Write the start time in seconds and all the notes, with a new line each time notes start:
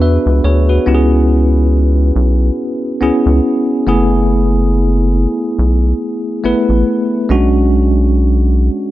Already playing: E2 B3 D4 F#4 B4
0.02 B4 E5
0.26 C#2
0.44 D2 G#4 C#5
0.69 F#4 B4
0.86 C#2 B3 C#4 E4 G4
0.95 G#4
2.16 B1
3.01 C#2 B3 C#4 E4 G#4
3.26 C#2
3.87 F#1 A3 B3 E4 G#4
5.59 B1
6.44 A1 A3 B3 E4 B4
6.69 A1
7.29 B1 G#3 C#4 D4 F#4